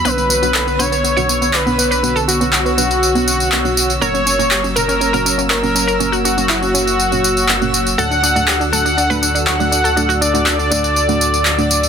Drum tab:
TB |xxxxxxxxxxxxxxxx|xxxxxxxxxxxxxxxx|xxxxxxxxxxxxxxxx|xxxxxxxxxxxxxxxx|
CP |----x-------x---|----x-------x---|----x-------x---|----x-------x---|

TB |xxxxxxxxxxxxxxxx|xxxxxxxxxxxxxxxx|
CP |----x-------x---|----x-------x---|